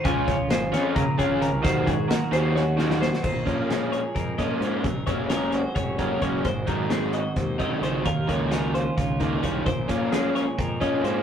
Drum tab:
CC |--------------|--------------|x-------------|--------------|
HH |x-x-x-x-x-x-x-|x-x-x-x-------|--x-x-x-x-x-x-|x-x-x-x-x-x-x-|
SD |--o-o-o-------|----o---o-oooo|----o-----o-o-|----o---------|
BD |o-o-----o-o---|o-o-----------|o-o-----o-o---|o-o-----o-o-o-|

CC |--------------|--------------|--------------|
HH |x-x-x-x-x-x-x-|x-x-x-x-x-x-x-|x-x-x-x-x-x-x-|
SD |----o---o---o-|--o-o---o-----|----o-o---o---|
BD |o-o-----o-o---|o-o-----o-o-o-|o-o-----o-o---|